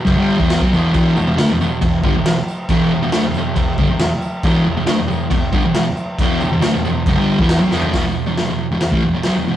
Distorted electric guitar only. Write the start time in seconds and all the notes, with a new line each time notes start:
0.05 F#2 C#3
0.17 G2 D3 G3
0.38 E2 B2 E3
0.61 B2 F#3
0.73 E2 B2 E3
0.94 E2 B2 E3
1.16 E2 B2
1.27 E2 B2
1.37 D3 A3
1.50 E2 B2
1.61 E2 B2
1.82 E2 B2
2.03 G2 D3
2.15 E2 B2
2.25 E2 B2
2.69 E2 B2 E3
2.93 E2 B2
3.02 E2 B2
3.12 D3 A3
3.25 E2 B2
3.37 E2 B2
3.56 E2 B2
3.79 G2 D3
3.89 E2 B2
3.99 E2 B2
4.44 E2 B2 E3
4.64 E2 B2
4.76 E2 B2
4.86 D3 A3
4.98 E2 B2
5.08 E2 B2
5.30 E2 B2
5.52 G2 D3
5.65 E2 B2
5.76 E2 B2
6.20 E2 B2 E3
6.41 E2 B2
6.52 E2 B2
6.61 D3 A3
6.74 E2 B2
6.85 E2 B2
7.07 F#2 C#3
7.16 G2 D3 G3
7.40 E2 B2 E3
7.60 B2 F#3
7.71 E2 B2 E3
7.93 E2 B2
8.06 E2 B2
8.26 E2 B2
8.38 E2 B2
8.47 E2 B2
8.71 E2 B2
8.82 E2 B2
8.92 A2 E3
9.04 E2 B2
9.15 E2 B2
9.26 B2 F#3
9.36 E2 B2
9.48 E2 B2